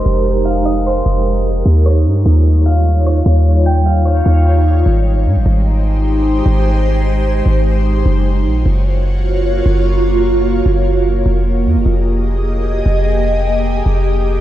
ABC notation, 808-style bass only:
X:1
M:4/4
L:1/16
Q:1/4=150
K:Ab
V:1 name="808-style bass" clef=bass
F,,,8- F,,,2 F,,,6 | E,,4 G,,2 E,,8- E,,2 | E,,8- E,,2 E,,6 | A,,,4 A,, A,,, A,,,8- A,,,2 |
A,,,8- A,,,2 A,,,6 | _G,,,4 B,,,2 G,,,8- G,,,2 | _G,,,8- G,,,2 G,,,6 | F,,,4 F,, F,,, F,,,8- F,,,2 |
F,,,8- F,,,2 F,,,6 |]